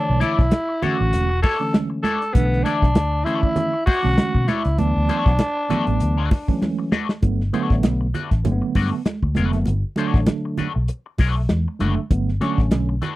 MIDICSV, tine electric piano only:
0, 0, Header, 1, 2, 480
1, 0, Start_track
1, 0, Tempo, 609756
1, 1854, Time_signature, 4, 2, 24, 8
1, 10357, End_track
2, 0, Start_track
2, 0, Title_t, "Tine electric piano"
2, 0, Program_c, 0, 4
2, 0, Note_on_c, 0, 50, 74
2, 0, Note_on_c, 0, 52, 68
2, 0, Note_on_c, 0, 57, 66
2, 0, Note_on_c, 0, 73, 77
2, 345, Note_off_c, 0, 50, 0
2, 345, Note_off_c, 0, 52, 0
2, 347, Note_off_c, 0, 57, 0
2, 348, Note_off_c, 0, 73, 0
2, 646, Note_on_c, 0, 50, 72
2, 649, Note_on_c, 0, 52, 62
2, 651, Note_on_c, 0, 57, 68
2, 652, Note_on_c, 0, 61, 87
2, 999, Note_off_c, 0, 50, 0
2, 1000, Note_off_c, 0, 52, 0
2, 1001, Note_off_c, 0, 57, 0
2, 1001, Note_off_c, 0, 61, 0
2, 1258, Note_on_c, 0, 50, 73
2, 1262, Note_on_c, 0, 52, 65
2, 1263, Note_on_c, 0, 57, 72
2, 1265, Note_on_c, 0, 61, 83
2, 1588, Note_off_c, 0, 50, 0
2, 1590, Note_off_c, 0, 52, 0
2, 1591, Note_off_c, 0, 57, 0
2, 1591, Note_off_c, 0, 61, 0
2, 1845, Note_on_c, 0, 50, 77
2, 1849, Note_on_c, 0, 52, 76
2, 1850, Note_on_c, 0, 57, 73
2, 1854, Note_on_c, 0, 62, 85
2, 2262, Note_off_c, 0, 50, 0
2, 2264, Note_off_c, 0, 52, 0
2, 2264, Note_off_c, 0, 57, 0
2, 2266, Note_off_c, 0, 62, 0
2, 2566, Note_on_c, 0, 50, 64
2, 2569, Note_on_c, 0, 52, 59
2, 2571, Note_on_c, 0, 57, 65
2, 2572, Note_on_c, 0, 61, 77
2, 2917, Note_off_c, 0, 50, 0
2, 2918, Note_off_c, 0, 52, 0
2, 2920, Note_off_c, 0, 57, 0
2, 2920, Note_off_c, 0, 61, 0
2, 3173, Note_on_c, 0, 50, 82
2, 3176, Note_on_c, 0, 52, 64
2, 3177, Note_on_c, 0, 57, 65
2, 3181, Note_on_c, 0, 61, 89
2, 3504, Note_off_c, 0, 50, 0
2, 3506, Note_off_c, 0, 52, 0
2, 3506, Note_off_c, 0, 57, 0
2, 3509, Note_off_c, 0, 61, 0
2, 3760, Note_on_c, 0, 52, 77
2, 3764, Note_on_c, 0, 54, 63
2, 3766, Note_on_c, 0, 57, 66
2, 3767, Note_on_c, 0, 59, 81
2, 4179, Note_off_c, 0, 52, 0
2, 4181, Note_off_c, 0, 54, 0
2, 4181, Note_off_c, 0, 57, 0
2, 4182, Note_off_c, 0, 59, 0
2, 4480, Note_on_c, 0, 52, 77
2, 4482, Note_on_c, 0, 54, 78
2, 4486, Note_on_c, 0, 57, 82
2, 4490, Note_on_c, 0, 59, 93
2, 4834, Note_off_c, 0, 52, 0
2, 4834, Note_off_c, 0, 54, 0
2, 4836, Note_off_c, 0, 57, 0
2, 4838, Note_off_c, 0, 59, 0
2, 5102, Note_on_c, 0, 52, 82
2, 5103, Note_on_c, 0, 54, 82
2, 5105, Note_on_c, 0, 57, 73
2, 5107, Note_on_c, 0, 61, 90
2, 5428, Note_off_c, 0, 52, 0
2, 5429, Note_off_c, 0, 54, 0
2, 5430, Note_off_c, 0, 57, 0
2, 5431, Note_off_c, 0, 61, 0
2, 5686, Note_on_c, 0, 50, 82
2, 5688, Note_on_c, 0, 54, 74
2, 5690, Note_on_c, 0, 57, 69
2, 5694, Note_on_c, 0, 59, 80
2, 5836, Note_off_c, 0, 50, 0
2, 5836, Note_off_c, 0, 54, 0
2, 5837, Note_off_c, 0, 57, 0
2, 5839, Note_off_c, 0, 59, 0
2, 5926, Note_on_c, 0, 50, 105
2, 5930, Note_on_c, 0, 54, 94
2, 5931, Note_on_c, 0, 57, 97
2, 5932, Note_on_c, 0, 59, 111
2, 6341, Note_off_c, 0, 50, 0
2, 6343, Note_off_c, 0, 54, 0
2, 6344, Note_off_c, 0, 57, 0
2, 6344, Note_off_c, 0, 59, 0
2, 6646, Note_on_c, 0, 50, 93
2, 6647, Note_on_c, 0, 54, 86
2, 6648, Note_on_c, 0, 57, 84
2, 6650, Note_on_c, 0, 58, 82
2, 6703, Note_on_c, 0, 59, 109
2, 6707, Note_off_c, 0, 58, 0
2, 7061, Note_off_c, 0, 50, 0
2, 7062, Note_off_c, 0, 54, 0
2, 7062, Note_off_c, 0, 57, 0
2, 7090, Note_off_c, 0, 59, 0
2, 7365, Note_on_c, 0, 50, 78
2, 7366, Note_on_c, 0, 54, 68
2, 7367, Note_on_c, 0, 57, 62
2, 7371, Note_on_c, 0, 59, 88
2, 7641, Note_off_c, 0, 50, 0
2, 7642, Note_off_c, 0, 54, 0
2, 7642, Note_off_c, 0, 57, 0
2, 7644, Note_off_c, 0, 59, 0
2, 7842, Note_on_c, 0, 50, 102
2, 7844, Note_on_c, 0, 54, 97
2, 7847, Note_on_c, 0, 57, 90
2, 7850, Note_on_c, 0, 62, 107
2, 8393, Note_off_c, 0, 50, 0
2, 8394, Note_off_c, 0, 54, 0
2, 8395, Note_off_c, 0, 57, 0
2, 8397, Note_off_c, 0, 62, 0
2, 9284, Note_on_c, 0, 50, 81
2, 9286, Note_on_c, 0, 54, 69
2, 9289, Note_on_c, 0, 57, 79
2, 9291, Note_on_c, 0, 62, 94
2, 9436, Note_off_c, 0, 50, 0
2, 9436, Note_off_c, 0, 54, 0
2, 9438, Note_off_c, 0, 57, 0
2, 9439, Note_off_c, 0, 62, 0
2, 9529, Note_on_c, 0, 50, 86
2, 9532, Note_on_c, 0, 54, 70
2, 9534, Note_on_c, 0, 57, 69
2, 9536, Note_on_c, 0, 59, 89
2, 9678, Note_off_c, 0, 50, 0
2, 9680, Note_off_c, 0, 54, 0
2, 9680, Note_off_c, 0, 57, 0
2, 9681, Note_off_c, 0, 59, 0
2, 9766, Note_on_c, 0, 50, 104
2, 9768, Note_on_c, 0, 54, 87
2, 9769, Note_on_c, 0, 57, 88
2, 9772, Note_on_c, 0, 61, 123
2, 10182, Note_off_c, 0, 50, 0
2, 10183, Note_off_c, 0, 54, 0
2, 10184, Note_off_c, 0, 57, 0
2, 10186, Note_off_c, 0, 61, 0
2, 10357, End_track
0, 0, End_of_file